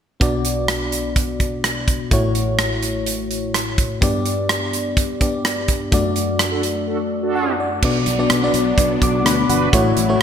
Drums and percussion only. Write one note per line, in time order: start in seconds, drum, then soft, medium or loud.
0.21 kick medium
0.21 closed hi-hat medium
0.45 closed hi-hat medium
0.68 cross-stick medium
0.68 closed hi-hat medium
0.92 closed hi-hat medium
1.16 kick medium
1.16 closed hi-hat medium
1.40 kick medium
1.40 closed hi-hat medium
1.64 cross-stick medium
1.64 closed hi-hat medium
1.88 kick medium
1.88 closed hi-hat medium
2.11 kick medium
2.11 closed hi-hat medium
2.35 closed hi-hat medium
2.59 cross-stick medium
2.59 closed hi-hat medium
2.82 closed hi-hat medium
3.06 closed hi-hat medium
3.31 closed hi-hat medium
3.54 cross-stick medium
3.54 closed hi-hat medium
3.78 kick medium
3.78 closed hi-hat medium
4.02 kick medium
4.02 closed hi-hat medium
4.26 closed hi-hat medium
4.49 cross-stick medium
4.49 closed hi-hat medium
4.73 closed hi-hat medium
4.97 kick medium
4.97 closed hi-hat medium
5.21 kick medium
5.21 closed hi-hat medium
5.45 cross-stick medium
5.45 closed hi-hat medium
5.68 kick medium
5.68 closed hi-hat medium
5.92 kick medium
5.92 closed hi-hat medium
6.16 closed hi-hat medium
6.39 cross-stick medium
6.39 closed hi-hat medium
6.63 closed hi-hat medium
7.83 kick loud
7.83 crash medium
8.06 closed hi-hat medium
8.30 cross-stick loud
8.30 closed hi-hat medium
8.54 closed hi-hat medium
8.78 kick medium
8.78 closed hi-hat medium
9.02 kick medium
9.02 closed hi-hat medium
9.26 cross-stick medium
9.26 closed hi-hat medium
9.50 closed hi-hat medium
9.73 kick loud
9.73 closed hi-hat medium
9.97 closed hi-hat medium